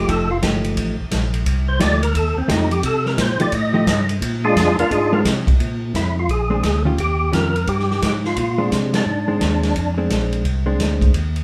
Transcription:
0.07 F1 F3 A3 D#4 G4 A4, kick, ride
0.31 F4
0.42 G1 F3 A3 D#4 G4, kick, snare, hi-hat pedal, ride
0.64 ride
0.77 A1, kick, ride
0.99 A1
1.11 A#1, kick, snare, hi-hat pedal, ride
1.34 ride
1.46 C2, kick, ride
1.68 C5
1.80 D2 F3 A3 D#4 G4 D5, kick, snare, hi-hat pedal, ride
2.03 A#4, ride
2.14 D#2 A4, kick, ride
2.36 D#2 C4
2.48 F2 F3 A3 D#4 G4, kick, snare, hi-hat pedal, ride
2.71 G4, ride
2.83 C3 A4, kick, ride
3.06 A#4, snare
3.17 A#2 C5, kick, snare, hi-hat pedal, ride
3.40 A#2 F3 A3 D#4 G4 D5, ride
3.52 A2 D#5, kick, ride
3.74 F3 A3 D#4 G4
3.86 G2, kick, snare, hi-hat pedal, ride
4.09 ride
4.21 A#2, kick, ride
4.44 G#3 D4 F4 G#4
4.56 F2, kick, snare, hi-hat pedal, ride
4.77 F2 A#3 D4 F4 A#4, ride
4.91 G#2 G#3 D4 F4 G#4, kick, ride
5.13 G#3 A#3 C4 D4 F4 A#4
5.25 C3, kick, snare, hi-hat pedal, ride
5.47 C3, kick, ride
5.60 A#2, kick, ride
5.94 F2 E4, kick, snare, hi-hat pedal, ride
6.19 F4
6.28 A#1 G#4, kick, ride
6.50 G#3 C4 D4
6.63 D2, kick, snare, hi-hat pedal, ride
6.85 D#3 C#4 F4 G4
6.98 D#2 G4, kick, ride
7.32 F2 D#3 C#4 F4 G4 A#4, kick, snare, hi-hat pedal, ride
7.56 ride
7.67 G2 G4, kick, ride
7.79 snare
7.91 snare
8.02 G#2 G4, kick, snare, hi-hat pedal, ride
8.25 F4, snare
8.36 A#2 F4, kick, ride
8.58 G#3 C4 D4
8.72 C3, kick, snare, hi-hat pedal, ride
8.94 D4, snare, ride
9.05 G#2
9.28 G#3 C4 D4
9.41 D#2, kick, snare, hi-hat pedal, ride
9.63 snare, ride
9.75 F2, kick, ride
9.98 G#3 C4 D4
10.10 A#1, kick, snare, hi-hat pedal, ride
10.33 ride
10.45 C2, kick, ride
10.66 G#3 C4 D4
10.79 D2, kick, snare, hi-hat pedal, ride
11.01 kick, ride
11.14 D#2, kick, ride
11.36 ride

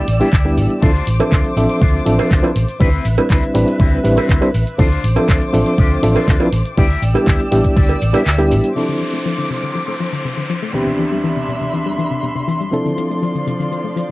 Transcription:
Already playing: D5 G5 E6
0.08 A1, open hi-hat
0.20 G3 B3 D4 E4 G4 D5, muted fingered electric bass stroke, closed hi-hat
0.33 D2, kick, clap, open hi-hat
0.45 G3 B3 D4 E4 G4
0.57 A1, open hi-hat
0.70 closed hi-hat
0.81 D2 F3 C4 D4 E4 F4 A4 C5 D6, kick, closed hi-hat, shaker
0.95 closed hi-hat, shaker
1.07 A1, open hi-hat, shaker
1.19 F3 C4 D4 A4 E5, muted fingered electric bass stroke, closed hi-hat, cowbell, shaker
1.31 D2 D4 F4 C5, kick, clap, closed hi-hat, shaker
1.45 closed hi-hat, shaker
1.56 A1 F3 C4 D4 A4 E5, muted clean electric guitar stroke, open hi-hat, shaker
1.69 closed hi-hat, shaker
1.80 D2 D4 F4 C5, kick, closed hi-hat, shaker
2.06 A1 F3 C4 D4 A4 E5, open hi-hat, shaker
2.18 D4 F4 C5, muted fingered electric bass stroke, closed hi-hat, cowbell, shaker
2.31 D2, kick, clap, open hi-hat, shaker
2.43 F3 C4 D4 E4 B4, cowbell
2.56 A1, open hi-hat, shaker
2.68 closed hi-hat, shaker
2.80 D2 G3 C4 D4 E4 B4 E5, kick, closed hi-hat, shaker
2.93 closed hi-hat, shaker
3.05 A1, open hi-hat, shaker
3.18 G3 C4 D4 E4 B4, muted fingered electric bass stroke, closed hi-hat, cowbell, shaker
3.29 D2 C4 E4 B4, kick, clap, closed hi-hat, shaker
3.43 closed hi-hat, shaker
3.54 A1 G3 C4 D4 E4 B4, muted clean electric guitar stroke, open hi-hat, shaker
3.68 closed hi-hat, shaker
3.79 D2 C4 E4 B4, kick, closed hi-hat, shaker
4.04 A1 G3 C4 D4 E4 B4, open hi-hat, shaker
4.16 C4 E4 B4, muted fingered electric bass stroke, closed hi-hat, cowbell, shaker
4.29 D2, kick, clap, open hi-hat, shaker
4.41 G3 C4 D4 E4 C5, cowbell, shaker
4.54 A1, open hi-hat, shaker
4.67 closed hi-hat, shaker
4.78 D2 F3 C4 D4 E4 F4 A4 C5 D6, kick, closed hi-hat, shaker
4.92 closed hi-hat, shaker
5.04 A1, open hi-hat, shaker
5.16 F3 C4 D4 A4 E5, muted fingered electric bass stroke, closed hi-hat, cowbell, shaker
5.28 D2 D4 F4 C5, kick, clap, closed hi-hat, shaker
5.42 closed hi-hat, shaker
5.53 A1 F3 C4 D4 A4 E5, muted clean electric guitar stroke, open hi-hat, shaker
5.66 closed hi-hat, shaker
5.78 D2 D4 F4 G4, kick, closed hi-hat, shaker
6.02 A1 F3 C4 D4 A4 E5, open hi-hat, shaker
6.15 D4 F4 C5, muted fingered electric bass stroke, closed hi-hat, cowbell, shaker
6.28 D2, kick, clap, open hi-hat, shaker
6.40 F3 C4 D4 E4 B4, cowbell
6.52 A1, open hi-hat, shaker
6.66 closed hi-hat, shaker
6.77 D2 G3 B3 D4 E4 G4 D5 G5 E6, kick, closed hi-hat, shaker
6.91 closed hi-hat, shaker
7.02 A1, open hi-hat, shaker
7.14 G3 B3 D4 E4 G4, muted fingered electric bass stroke, closed hi-hat, cowbell, shaker
7.26 D2 E4 G4 E5, kick, clap, closed hi-hat, shaker
7.40 closed hi-hat, shaker
7.51 A1 G3 B3 D4 E4 G4, muted clean electric guitar stroke, open hi-hat, shaker
7.65 kick, closed hi-hat, shaker
7.76 D2 E4 G4 D5, kick, closed hi-hat, shaker
7.89 closed hi-hat, cowbell, shaker
8.02 A1, open hi-hat, shaker
8.13 G3 B3 D4 E4 G4 E5, muted fingered electric bass stroke, closed hi-hat, cowbell, shaker
8.26 D2, clap, open hi-hat, shaker
8.38 G3 B3 D4 E4 G4, closed hi-hat, cowbell, shaker
8.51 A1, open hi-hat, shaker
8.64 closed hi-hat, shaker
8.75 C3 F3 C4 D4 E4 A4 C5 D6, downlifter, shaker
8.88 D3
9.01 F3, shaker
9.13 A3
9.25 F3
9.38 D3
9.50 C3, shaker
9.63 D3, shaker
9.75 F3, shaker
9.88 A3
10.00 F3, shaker
10.12 D3, shaker
10.25 C3, shaker
10.37 D3
10.50 F3, shaker
10.62 A3, shaker
10.73 D2 B2 E3 B3 C4 D4 G4 E5 B5 C6, shaker
10.87 C3, shaker
10.99 E3, shaker
11.12 G3, shaker
11.24 E3, shaker
11.36 C3, shaker
11.49 B2, shaker
11.61 C3, shaker
11.73 E3, shaker
11.86 G3
11.98 E3, shaker
12.11 C3, shaker
12.23 B2, shaker
12.35 C3, shaker
12.48 E3, shaker
12.61 G3, shaker
12.71 C3 F3 C4 D4 E4 A4 D5, shaker
12.85 D3, shaker
12.98 F3, shaker
13.11 A3, shaker
13.22 F3, shaker
13.35 D3, shaker
13.47 C3, shaker
13.60 D3, shaker
13.72 F3, shaker
13.84 A3
13.96 F3, shaker

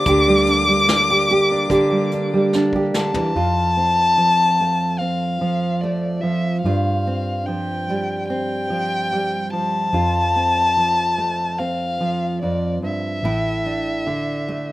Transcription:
Already playing: D4 D5 D6
0.06 D2 D3 G3 G4 A#4, kick, closed hi-hat
0.10 A#3
0.28 G3
0.47 D4, closed hi-hat
0.68 G3
0.88 D4, snare, closed hi-hat
1.10 G4
1.30 G4, closed hi-hat
1.52 D4
1.70 D3 G4, kick, closed hi-hat
1.91 G3
2.11 D4, closed hi-hat
2.34 G3
2.53 D4, snare
2.73 G4, kick
2.94 D3 A5, snare
3.14 E3, floor tom
3.35 F2 F4
3.77 C4
4.18 F3
4.60 A3
4.98 C4 F5
5.41 F3
5.81 A3 D5
6.21 F3 E5
6.62 G2 F4 F5
7.07 C4
7.46 F3 G5
7.90 G3
8.28 C4 G5
8.70 F3
9.13 G3
9.50 F3 A5
9.93 F2 F4
10.36 C4
10.77 F3
11.18 A3
11.58 C4 F5
12.00 F3
12.41 F2 D5
12.82 G2 E5
13.23 A1 A2 E4
13.66 D4
14.07 D3
14.48 A3

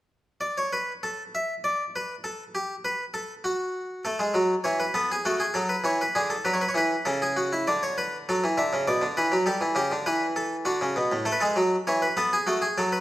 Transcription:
0.41 D5
0.58 C#5
0.73 B4
1.03 A4
1.35 E5
1.64 D5
1.96 B4
2.24 A4
2.55 G4
2.85 B4
3.14 A4
3.44 F#4
4.05 A3 A4
4.19 G#3
4.34 F#3
4.64 E3 C#5
4.80 B4
4.94 B3 A4
5.12 G#4
5.25 A3 F#4
5.40 G#4
5.54 F#3 A4
5.69 B4
5.84 E3 C#5
6.01 B4
6.15 D3 G#4
6.30 A4
6.45 F#3 B4
6.54 C#5
6.61 B4
6.69 C#5
6.75 E3 B4
7.05 C#3 A4
7.22 G#4
7.37 F#4
7.53 E4
7.67 D3 D5
7.83 C#5
7.98 B4
8.29 F#3 A4
8.44 E3
8.58 D3 E5
8.73 C#3
8.88 B2 D5
9.02 D3
9.17 E3 B4
9.32 F#3
9.46 G3 A4
9.61 E3
9.75 C#3 G4
9.92 D3
10.06 E3 B4
10.36 A4
10.65 D3 F#4
10.81 C#3
10.96 B2
11.12 A2
11.25 A3 A4
11.32 B4
11.40 G#3 A4
11.56 F#3
11.87 E3 C#5
12.02 B4
12.17 B3 A4
12.33 G#4
12.47 A3 F#4
12.62 G#4
12.78 F#3 A4
12.92 B4

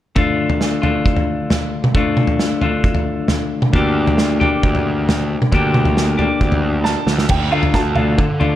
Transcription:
0.15 D3 A3 D4 F4, kick, floor tom
0.50 floor tom
0.61 snare
0.82 D3 A3 D4 F4, floor tom
1.06 kick
1.16 floor tom
1.50 snare, floor tom
1.84 mid tom
1.94 D3 A3 D4 F4, kick, floor tom
2.17 mid tom
2.27 floor tom
2.39 snare
2.61 D3 A3 D4 F4, floor tom
2.84 kick
2.95 floor tom
3.28 snare, floor tom
3.62 mid tom
3.73 D2 D3 A#3 D4 G4, kick, floor tom
4.07 floor tom
4.18 snare
4.40 D3 A#3 D4 G4, floor tom
4.63 D2, kick
4.75 floor tom
5.09 snare, floor tom
5.42 mid tom
5.52 D2 D3 A#3 D4 G4, kick, floor tom
5.74 mid tom
5.85 floor tom
5.97 snare
6.18 D3 A#3 D4 G4, floor tom
6.41 D2, kick
6.52 floor tom
6.84 A5, snare
7.07 D2, snare
7.18 snare
7.29 D2 G5, kick, floor tom, crash
7.52 D3 A3 D4 F4 F5
7.63 floor tom
7.74 D2 A5, kick, snare
7.96 D3 A3 D4 F4 F5, floor tom, mid tom
8.18 D3, kick
8.40 D3 A3 D4 F4, floor tom

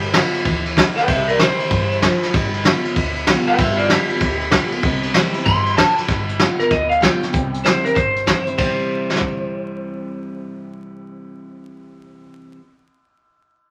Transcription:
Already playing: G1 G3
0.02 ride
0.12 G3 B3 F4, snare, ride
0.34 muted upright bass stroke, ride
0.45 D2 E3, kick, ride
0.66 ride
0.77 D3, kick, snare, ride
0.96 B4 G5, muted upright bass stroke, snare, ride
1.08 C2 C3 G4 E5, kick, ride
1.28 A#4 D5, ride
1.39 E3 G3 C4 E4 C5, snare, ride
1.59 C4 E4, muted upright bass stroke, ride
1.70 G2 E3, kick, ride
1.91 ride
2.02 F3, kick, snare, ride
2.22 muted upright bass stroke, snare, ride
2.34 G1 G3, kick, ride
2.54 ride
2.64 G3 B3 F4, snare, ride
2.84 B3 F4, muted upright bass stroke, ride
2.96 D2 D3, kick, ride
3.16 ride
3.27 G3 B3 F4, kick, snare, ride
3.47 B4 G5, muted upright bass stroke, ride
3.59 G1 G3 G4 E5, kick, ride
3.77 F4 D5, ride
3.90 G3 B3 F4 G4, snare, ride
4.09 B3 F4, muted upright bass stroke, ride
4.20 D2 D3, kick, ride
4.41 ride
4.51 G3 B3 F4, kick, snare, ride
4.71 B3 F4, muted upright bass stroke, ride
4.83 C2 C3, kick, ride
5.03 ride
5.14 E3 G3 C4 E4, snare, ride
5.34 C4 E4, muted upright bass stroke, ride
5.46 G2 E3 C6, kick, ride
5.66 ride
5.77 F3 A5, kick, snare, ride
5.96 G5, muted upright bass stroke, snare, ride
6.08 G1 G3, kick, snare, closed hi-hat
6.29 closed hi-hat
6.39 G3 B3 F4, snare, closed hi-hat
6.58 B3 F4 A#4, muted upright bass stroke, snare, closed hi-hat
6.71 D2 D3 D#5, kick, snare, closed hi-hat
6.89 F5, closed hi-hat
7.01 G3 B3 F4 G5, kick, snare, closed hi-hat
7.21 B3 F4, muted upright bass stroke, snare, closed hi-hat
7.33 C2 C3, kick, closed hi-hat
7.54 closed hi-hat
7.64 E3 G3 C4 E4 C5, snare, closed hi-hat
7.83 C4 E4 A#4, muted upright bass stroke, closed hi-hat
7.95 G1 G2 C5, kick, closed hi-hat
8.16 closed hi-hat
8.26 E3 G3 C4 E4, kick, snare, closed hi-hat
8.47 C4 E4, muted upright bass stroke, closed hi-hat
8.58 C2 C3 E3 G3 C4 C5, kick, crash
8.62 E4
9.10 snare
9.16 snare
9.21 kick

